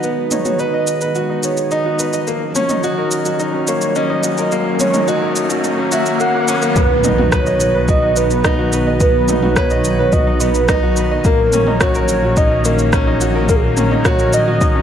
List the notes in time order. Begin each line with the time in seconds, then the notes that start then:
Already playing: B1 D#3 B3 D#4 F#4 B4 D#5, riser
0.03 G#3 B3, shaker
0.31 D#4 C#5, mid tom, shaker
0.45 F#4, mid tom, shaker
0.59 B4 D#5, shaker
0.74 D#5
0.87 shaker
1.01 B4, shaker
1.15 F#4, shaker
1.30 D#4
1.43 B3 C#5, shaker
1.57 shaker
1.71 D#4 D#5, shaker
1.86 F#4
1.99 B4, shaker
2.13 D#5, shaker
2.27 A#1 F#3 A#3 C#4, shaker
2.55 C#4 C#5, mid tom, shaker
2.69 D#4, mid tom, shaker
2.83 F#4 D#5, shaker
2.98 A#4
3.11 shaker
3.25 F#4, shaker
3.40 D#4, shaker
3.54 C#4
3.67 A#3 C#5, shaker
3.81 shaker
3.95 C#4 D#5, shaker
4.10 D#4
4.23 F#4, shaker
4.38 A#4, shaker
4.52 A#3, shaker
4.80 C#4 C#5, mid tom, shaker
4.94 D#4, mid tom, shaker
5.08 F#4 D#5, shaker
5.22 A#4
5.36 shaker
5.50 F#4, shaker
5.64 D#4, shaker
5.78 C#4
5.92 F#4 E5, shaker
6.06 shaker
6.20 A#3 F#5, shaker
6.34 A#3
6.48 C#4, shaker
6.62 A#3, shaker
6.76 B1 D#3 F#3 B3 B4, kick, impact, shaker
7.04 D#4, mid tom, shaker
7.18 F#4, mid tom
7.32 B4 C#5, kick, cross-stick, shaker
7.46 D#5, shaker
7.60 shaker
7.75 B4
7.88 F#4 D#5, kick, shaker
8.02 D#4
8.16 B3 B4, shaker
8.30 shaker
8.44 D#4, kick, cross-stick, shaker
8.59 F#4
8.73 B4, shaker
8.87 D#5
9.00 B3 B4, kick, shaker
9.28 D#4, mid tom, shaker
9.42 F#4, mid tom
9.56 B4 C#5, kick, cross-stick, shaker
9.70 D#5, shaker
9.84 shaker
9.99 B4
10.12 F#4 D#5, kick, shaker
10.27 D#4
10.40 B3 B4, shaker
10.54 shaker
10.69 D#4, kick, cross-stick, shaker
10.83 F#4
10.97 B4, shaker
11.11 D#5
11.25 A#1 D#3 A#3 C#4 A#4, kick, shaker
11.53 C#4, mid tom, shaker
11.67 D#4, mid tom
11.81 F#4 C#5, kick, cross-stick, shaker
11.95 A#4, shaker
12.08 shaker
12.23 F#4
12.37 D#4 D#5, kick, shaker
12.51 C#4
12.65 A#3 A#4, shaker
12.79 shaker
12.93 C#4, kick, cross-stick, shaker
13.07 D#4
13.21 F#4, shaker
13.35 A#4
13.49 A#3 A#4, kick, shaker
13.56 G#4
13.63 A#4
13.77 C#4, mid tom, shaker
13.91 D#4, mid tom
14.05 F#4 C#5, kick, cross-stick, shaker
14.19 A#4, shaker
14.33 D#5, shaker
14.48 F#4
14.61 D#4, kick, shaker
14.75 C#4